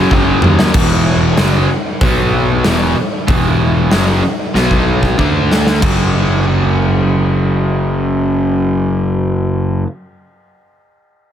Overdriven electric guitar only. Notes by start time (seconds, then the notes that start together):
Already playing: F#2 C#3 F#3
0.13 F#2 C#3 F#3
0.43 F#2 C#3 F#3
0.75 E2 B2 E3
1.37 F#2 C#3 F#3
2.02 B2 F#3 B3
2.64 E2 B2 E3
2.95 muted overdriven electric guitar stroke
3.27 E2 B2 E3
3.91 F#2 C#3 F#3
4.54 B2 F#3 B3
5.18 D3 A3 D4
5.80 F#2 C#3
5.84 F#3